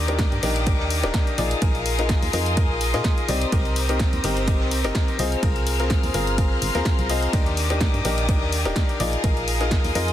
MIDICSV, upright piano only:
0, 0, Header, 1, 2, 480
1, 0, Start_track
1, 0, Key_signature, -3, "major"
1, 0, Tempo, 476190
1, 1632, Time_signature, 4, 2, 24, 8
1, 10208, End_track
2, 0, Start_track
2, 0, Title_t, "Upright piano"
2, 0, Program_c, 0, 0
2, 83, Note_on_c, 0, 62, 88
2, 83, Note_on_c, 0, 63, 77
2, 83, Note_on_c, 0, 67, 82
2, 83, Note_on_c, 0, 70, 99
2, 406, Note_off_c, 0, 62, 0
2, 406, Note_off_c, 0, 63, 0
2, 406, Note_off_c, 0, 67, 0
2, 406, Note_off_c, 0, 70, 0
2, 432, Note_on_c, 0, 62, 80
2, 432, Note_on_c, 0, 63, 77
2, 432, Note_on_c, 0, 67, 77
2, 432, Note_on_c, 0, 70, 96
2, 646, Note_off_c, 0, 62, 0
2, 646, Note_off_c, 0, 63, 0
2, 646, Note_off_c, 0, 67, 0
2, 646, Note_off_c, 0, 70, 0
2, 672, Note_on_c, 0, 62, 76
2, 672, Note_on_c, 0, 63, 74
2, 672, Note_on_c, 0, 67, 69
2, 672, Note_on_c, 0, 70, 85
2, 1012, Note_off_c, 0, 62, 0
2, 1012, Note_off_c, 0, 63, 0
2, 1012, Note_off_c, 0, 67, 0
2, 1012, Note_off_c, 0, 70, 0
2, 1043, Note_on_c, 0, 62, 109
2, 1043, Note_on_c, 0, 63, 102
2, 1043, Note_on_c, 0, 67, 98
2, 1043, Note_on_c, 0, 70, 113
2, 1366, Note_off_c, 0, 62, 0
2, 1366, Note_off_c, 0, 63, 0
2, 1366, Note_off_c, 0, 67, 0
2, 1366, Note_off_c, 0, 70, 0
2, 1392, Note_on_c, 0, 63, 85
2, 1392, Note_on_c, 0, 65, 80
2, 1392, Note_on_c, 0, 68, 79
2, 1392, Note_on_c, 0, 74, 101
2, 1599, Note_off_c, 0, 63, 0
2, 1599, Note_off_c, 0, 65, 0
2, 1599, Note_off_c, 0, 68, 0
2, 1599, Note_off_c, 0, 74, 0
2, 1632, Note_on_c, 0, 63, 83
2, 1632, Note_on_c, 0, 65, 76
2, 1632, Note_on_c, 0, 68, 79
2, 1632, Note_on_c, 0, 70, 91
2, 1971, Note_off_c, 0, 68, 0
2, 1972, Note_off_c, 0, 63, 0
2, 1972, Note_off_c, 0, 65, 0
2, 1972, Note_off_c, 0, 70, 0
2, 2003, Note_on_c, 0, 65, 82
2, 2003, Note_on_c, 0, 70, 92
2, 2004, Note_on_c, 0, 63, 90
2, 2004, Note_on_c, 0, 68, 78
2, 2326, Note_off_c, 0, 63, 0
2, 2326, Note_off_c, 0, 65, 0
2, 2326, Note_off_c, 0, 68, 0
2, 2326, Note_off_c, 0, 70, 0
2, 2352, Note_on_c, 0, 63, 83
2, 2352, Note_on_c, 0, 65, 73
2, 2352, Note_on_c, 0, 68, 75
2, 2352, Note_on_c, 0, 70, 96
2, 2566, Note_off_c, 0, 63, 0
2, 2566, Note_off_c, 0, 65, 0
2, 2566, Note_off_c, 0, 68, 0
2, 2566, Note_off_c, 0, 70, 0
2, 2592, Note_on_c, 0, 63, 78
2, 2592, Note_on_c, 0, 65, 69
2, 2592, Note_on_c, 0, 68, 70
2, 2592, Note_on_c, 0, 70, 87
2, 2931, Note_off_c, 0, 63, 0
2, 2931, Note_off_c, 0, 70, 0
2, 2932, Note_off_c, 0, 65, 0
2, 2932, Note_off_c, 0, 68, 0
2, 2963, Note_on_c, 0, 63, 107
2, 2963, Note_on_c, 0, 65, 99
2, 2963, Note_on_c, 0, 68, 100
2, 2963, Note_on_c, 0, 70, 117
2, 3286, Note_off_c, 0, 63, 0
2, 3286, Note_off_c, 0, 65, 0
2, 3286, Note_off_c, 0, 68, 0
2, 3286, Note_off_c, 0, 70, 0
2, 3312, Note_on_c, 0, 60, 92
2, 3312, Note_on_c, 0, 63, 79
2, 3312, Note_on_c, 0, 67, 82
2, 3312, Note_on_c, 0, 74, 95
2, 3519, Note_off_c, 0, 60, 0
2, 3519, Note_off_c, 0, 63, 0
2, 3519, Note_off_c, 0, 67, 0
2, 3519, Note_off_c, 0, 74, 0
2, 3552, Note_on_c, 0, 60, 86
2, 3552, Note_on_c, 0, 63, 81
2, 3552, Note_on_c, 0, 70, 99
2, 3553, Note_on_c, 0, 67, 82
2, 3892, Note_off_c, 0, 60, 0
2, 3892, Note_off_c, 0, 63, 0
2, 3892, Note_off_c, 0, 67, 0
2, 3892, Note_off_c, 0, 70, 0
2, 3923, Note_on_c, 0, 60, 92
2, 3923, Note_on_c, 0, 63, 82
2, 3923, Note_on_c, 0, 67, 77
2, 3923, Note_on_c, 0, 70, 98
2, 4246, Note_off_c, 0, 60, 0
2, 4246, Note_off_c, 0, 63, 0
2, 4246, Note_off_c, 0, 67, 0
2, 4246, Note_off_c, 0, 70, 0
2, 4273, Note_on_c, 0, 60, 87
2, 4273, Note_on_c, 0, 63, 75
2, 4273, Note_on_c, 0, 67, 81
2, 4273, Note_on_c, 0, 70, 91
2, 4486, Note_off_c, 0, 60, 0
2, 4486, Note_off_c, 0, 63, 0
2, 4486, Note_off_c, 0, 67, 0
2, 4486, Note_off_c, 0, 70, 0
2, 4512, Note_on_c, 0, 60, 77
2, 4512, Note_on_c, 0, 63, 73
2, 4512, Note_on_c, 0, 67, 71
2, 4513, Note_on_c, 0, 70, 86
2, 4852, Note_off_c, 0, 60, 0
2, 4852, Note_off_c, 0, 63, 0
2, 4852, Note_off_c, 0, 67, 0
2, 4852, Note_off_c, 0, 70, 0
2, 4883, Note_on_c, 0, 60, 110
2, 4883, Note_on_c, 0, 63, 100
2, 4883, Note_on_c, 0, 67, 96
2, 4883, Note_on_c, 0, 70, 121
2, 5206, Note_off_c, 0, 60, 0
2, 5206, Note_off_c, 0, 63, 0
2, 5206, Note_off_c, 0, 67, 0
2, 5206, Note_off_c, 0, 70, 0
2, 5232, Note_on_c, 0, 60, 87
2, 5232, Note_on_c, 0, 65, 80
2, 5232, Note_on_c, 0, 68, 79
2, 5232, Note_on_c, 0, 75, 93
2, 5439, Note_off_c, 0, 60, 0
2, 5439, Note_off_c, 0, 65, 0
2, 5439, Note_off_c, 0, 68, 0
2, 5439, Note_off_c, 0, 75, 0
2, 5473, Note_on_c, 0, 60, 85
2, 5473, Note_on_c, 0, 65, 75
2, 5473, Note_on_c, 0, 68, 78
2, 5473, Note_on_c, 0, 70, 100
2, 5812, Note_off_c, 0, 60, 0
2, 5812, Note_off_c, 0, 65, 0
2, 5812, Note_off_c, 0, 68, 0
2, 5812, Note_off_c, 0, 70, 0
2, 5843, Note_on_c, 0, 60, 89
2, 5843, Note_on_c, 0, 65, 78
2, 5843, Note_on_c, 0, 68, 84
2, 5843, Note_on_c, 0, 70, 93
2, 6166, Note_off_c, 0, 60, 0
2, 6166, Note_off_c, 0, 65, 0
2, 6166, Note_off_c, 0, 68, 0
2, 6166, Note_off_c, 0, 70, 0
2, 6192, Note_on_c, 0, 65, 74
2, 6192, Note_on_c, 0, 68, 77
2, 6192, Note_on_c, 0, 70, 92
2, 6193, Note_on_c, 0, 60, 82
2, 6406, Note_off_c, 0, 60, 0
2, 6406, Note_off_c, 0, 65, 0
2, 6406, Note_off_c, 0, 68, 0
2, 6406, Note_off_c, 0, 70, 0
2, 6432, Note_on_c, 0, 60, 76
2, 6432, Note_on_c, 0, 65, 71
2, 6432, Note_on_c, 0, 68, 69
2, 6432, Note_on_c, 0, 70, 84
2, 6771, Note_off_c, 0, 60, 0
2, 6771, Note_off_c, 0, 68, 0
2, 6772, Note_off_c, 0, 65, 0
2, 6772, Note_off_c, 0, 70, 0
2, 6803, Note_on_c, 0, 60, 105
2, 6803, Note_on_c, 0, 65, 96
2, 6803, Note_on_c, 0, 68, 97
2, 6803, Note_on_c, 0, 70, 119
2, 7126, Note_off_c, 0, 60, 0
2, 7126, Note_off_c, 0, 65, 0
2, 7126, Note_off_c, 0, 68, 0
2, 7126, Note_off_c, 0, 70, 0
2, 7152, Note_on_c, 0, 60, 86
2, 7152, Note_on_c, 0, 65, 79
2, 7152, Note_on_c, 0, 68, 79
2, 7152, Note_on_c, 0, 75, 97
2, 7359, Note_off_c, 0, 60, 0
2, 7359, Note_off_c, 0, 65, 0
2, 7359, Note_off_c, 0, 68, 0
2, 7359, Note_off_c, 0, 75, 0
2, 7392, Note_on_c, 0, 62, 88
2, 7392, Note_on_c, 0, 63, 79
2, 7392, Note_on_c, 0, 67, 82
2, 7392, Note_on_c, 0, 70, 89
2, 7732, Note_off_c, 0, 62, 0
2, 7732, Note_off_c, 0, 63, 0
2, 7732, Note_off_c, 0, 67, 0
2, 7732, Note_off_c, 0, 70, 0
2, 7763, Note_on_c, 0, 62, 84
2, 7763, Note_on_c, 0, 63, 80
2, 7763, Note_on_c, 0, 67, 80
2, 7763, Note_on_c, 0, 70, 95
2, 8086, Note_off_c, 0, 62, 0
2, 8086, Note_off_c, 0, 63, 0
2, 8086, Note_off_c, 0, 67, 0
2, 8086, Note_off_c, 0, 70, 0
2, 8112, Note_on_c, 0, 62, 83
2, 8112, Note_on_c, 0, 63, 81
2, 8112, Note_on_c, 0, 67, 75
2, 8112, Note_on_c, 0, 70, 96
2, 8326, Note_off_c, 0, 62, 0
2, 8326, Note_off_c, 0, 63, 0
2, 8326, Note_off_c, 0, 67, 0
2, 8326, Note_off_c, 0, 70, 0
2, 8352, Note_on_c, 0, 62, 79
2, 8352, Note_on_c, 0, 63, 70
2, 8352, Note_on_c, 0, 67, 69
2, 8352, Note_on_c, 0, 70, 84
2, 8691, Note_off_c, 0, 63, 0
2, 8691, Note_off_c, 0, 70, 0
2, 8692, Note_off_c, 0, 62, 0
2, 8692, Note_off_c, 0, 67, 0
2, 8723, Note_on_c, 0, 62, 103
2, 8723, Note_on_c, 0, 63, 98
2, 8723, Note_on_c, 0, 67, 103
2, 8723, Note_on_c, 0, 70, 119
2, 9046, Note_off_c, 0, 62, 0
2, 9046, Note_off_c, 0, 63, 0
2, 9046, Note_off_c, 0, 67, 0
2, 9046, Note_off_c, 0, 70, 0
2, 9072, Note_on_c, 0, 63, 87
2, 9072, Note_on_c, 0, 65, 80
2, 9072, Note_on_c, 0, 68, 83
2, 9072, Note_on_c, 0, 74, 102
2, 9279, Note_off_c, 0, 63, 0
2, 9279, Note_off_c, 0, 65, 0
2, 9279, Note_off_c, 0, 68, 0
2, 9279, Note_off_c, 0, 74, 0
2, 9312, Note_on_c, 0, 63, 84
2, 9312, Note_on_c, 0, 65, 79
2, 9312, Note_on_c, 0, 68, 78
2, 9312, Note_on_c, 0, 70, 94
2, 9651, Note_off_c, 0, 68, 0
2, 9652, Note_off_c, 0, 63, 0
2, 9652, Note_off_c, 0, 65, 0
2, 9652, Note_off_c, 0, 70, 0
2, 9682, Note_on_c, 0, 70, 92
2, 9683, Note_on_c, 0, 63, 86
2, 9683, Note_on_c, 0, 65, 82
2, 9683, Note_on_c, 0, 68, 80
2, 10006, Note_off_c, 0, 63, 0
2, 10006, Note_off_c, 0, 65, 0
2, 10006, Note_off_c, 0, 68, 0
2, 10006, Note_off_c, 0, 70, 0
2, 10032, Note_on_c, 0, 63, 83
2, 10032, Note_on_c, 0, 65, 82
2, 10032, Note_on_c, 0, 68, 79
2, 10032, Note_on_c, 0, 70, 97
2, 10208, Note_off_c, 0, 63, 0
2, 10208, Note_off_c, 0, 65, 0
2, 10208, Note_off_c, 0, 68, 0
2, 10208, Note_off_c, 0, 70, 0
2, 10208, End_track
0, 0, End_of_file